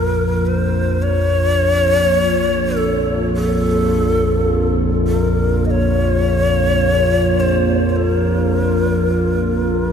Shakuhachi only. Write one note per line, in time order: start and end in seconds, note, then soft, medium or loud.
0.00 0.47 A#4 medium
0.46 1.04 C5 medium
1.02 2.78 C#5 loud
2.76 3.34 A4 medium
3.35 4.77 A4 medium
5.07 5.67 A#4 medium
5.65 5.71 D#5 medium
5.70 7.41 C#5 loud
7.40 7.89 C5 medium
7.89 7.98 C5 medium
7.96 8.13 A4 medium
8.13 9.92 A#4 medium